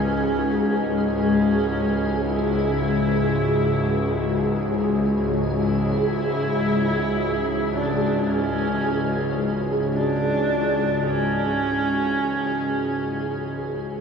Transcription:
Already playing: synth drone C#2 G#2, horsehead fiddle C#4, analog synth pad E4 F#4 G#4 C#5, synth texture G#4
1.16 horsehead fiddle C#4
2.26 horsehead fiddle E4
5.58 horsehead fiddle E4
7.76 horsehead fiddle D4
8.29 horsehead fiddle C#4
9.94 horsehead fiddle D4
11.03 horsehead fiddle C#4

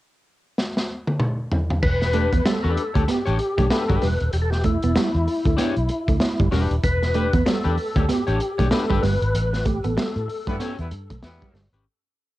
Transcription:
0.58 snare
0.77 snare
1.07 high tom
1.20 mid tom
1.52 floor tom
1.70 floor tom
1.82 fingered electric bass E1, tonewheel organ B4, kick, crash
2.02 muted clean electric guitar stroke, snare, closed hi-hat
2.13 clean electric guitar A3 D4 G4 B4, closed hi-hat
2.33 fingered electric bass E2, clean electric guitar B3, kick, closed hi-hat
2.45 clean electric guitar G3, tonewheel organ A4, muted fingered electric bass stroke, snare, closed hi-hat
2.63 fingered electric bass E2, clean electric guitar D4 G4 B4
2.77 muted clean electric guitar stroke, closed hi-hat
2.94 fingered electric bass D2, clean electric guitar A3 D4 G4 C#5, kick, closed hi-hat
3.08 clean electric guitar B3, tonewheel organ G4, snare, closed hi-hat
3.25 fingered electric bass A1, clean electric guitar D4 G4 C#5, closed hi-hat
3.39 muted clean electric guitar stroke, closed hi-hat
3.58 fingered electric bass B1, clean electric guitar A3 D4 G4 C#5, kick, closed hi-hat
3.70 clean electric guitar D4 G4 B4, tonewheel organ A4, muted clean electric guitar stroke, snare, closed hi-hat
3.88 fingered electric bass G1, clean electric guitar G3 D4 G4 B4, kick, closed hi-hat
4.02 fingered electric bass E1, clean electric guitar G3, tonewheel organ B4, snare, open hi-hat
4.21 fingered electric bass D#1, closed hi-hat
4.33 fingered electric bass E1, tonewheel organ G4, closed hi-hat
4.42 tonewheel organ A4
4.50 tonewheel organ G4, muted clean electric guitar stroke, snare
4.64 clean electric guitar A3, tonewheel organ E4, kick, closed hi-hat
4.83 fingered electric bass E1, clean electric guitar B3, closed hi-hat
4.96 clean electric guitar G3, muted fingered electric bass stroke, snare, closed hi-hat
5.15 fingered electric bass E2
5.28 muted clean electric guitar stroke, open hi-hat
5.45 fingered electric bass D2, clean electric guitar A3, kick, closed hi-hat
5.57 clean electric guitar B3 D4 G4 C#5, snare, closed hi-hat
5.76 fingered electric bass B1, closed hi-hat
5.89 muted clean electric guitar stroke, closed hi-hat
6.08 fingered electric bass D2, clean electric guitar A3, kick, closed hi-hat
6.20 muted clean electric guitar stroke, snare, closed hi-hat
6.39 fingered electric bass G1, clean electric guitar G3, kick, closed hi-hat
6.51 fingered electric bass E1, clean electric guitar G3 D4 G4 B4, snare, open hi-hat
6.71 fingered electric bass D#1, closed hi-hat
6.83 fingered electric bass E1, tonewheel organ B4, kick, closed hi-hat
7.03 muted clean electric guitar stroke, snare, closed hi-hat
7.14 clean electric guitar A3 D4 G4 B4, closed hi-hat
7.33 fingered electric bass E2, clean electric guitar B3, kick, closed hi-hat
7.45 clean electric guitar G3, tonewheel organ A4, muted fingered electric bass stroke, snare, closed hi-hat
7.64 fingered electric bass E2, clean electric guitar D4 G4 B4, closed hi-hat
7.77 muted clean electric guitar stroke, open hi-hat
7.96 fingered electric bass D2, clean electric guitar A3 D4 G4 C#5, kick, closed hi-hat
8.08 clean electric guitar B3, tonewheel organ G4, snare, closed hi-hat
8.27 fingered electric bass A1, clean electric guitar D4 G4 C#5, closed hi-hat
8.40 muted clean electric guitar stroke, closed hi-hat
8.58 fingered electric bass B1, clean electric guitar A3 D4 G4 C#5, kick, closed hi-hat
8.71 clean electric guitar D4 G4 B4, tonewheel organ A4, muted clean electric guitar stroke, snare, closed hi-hat
8.90 fingered electric bass G1, clean electric guitar G3 D4 G4 B4, kick
9.02 fingered electric bass G1, clean electric guitar G3, tonewheel organ B4, snare, open hi-hat
9.22 fingered electric bass G#1, closed hi-hat
9.35 fingered electric bass A1, closed hi-hat
9.53 muted clean electric guitar stroke, snare, closed hi-hat
9.65 clean electric guitar A3, tonewheel organ G4, kick, closed hi-hat
9.84 fingered electric bass A1, clean electric guitar B3, tonewheel organ A4, closed hi-hat
9.97 clean electric guitar G3, muted fingered electric bass stroke, snare, closed hi-hat
10.16 fingered electric bass A2, closed hi-hat
10.28 muted clean electric guitar stroke, open hi-hat
10.47 fingered electric bass G2, horn section G3 B3 E4 B4, clean electric guitar A3, kick, closed hi-hat
10.60 clean electric guitar B3 C#4 G4 C#5, snare, closed hi-hat
10.79 fingered electric bass E2, horn section G3 B3 E4 B4, closed hi-hat
10.91 fingered electric bass G2, muted clean electric guitar stroke, closed hi-hat
11.10 fingered electric bass B1, clean electric guitar A3, kick, closed hi-hat
11.22 fingered electric bass E2, horn section G3 B3 E4 B4, muted clean electric guitar stroke, snare, closed hi-hat
11.42 clean electric guitar G3, kick, closed hi-hat
11.54 fingered electric bass G1, clean electric guitar G3, snare, open hi-hat
11.72 fingered electric bass G#1, clean electric guitar C#4 G4 B4, closed hi-hat

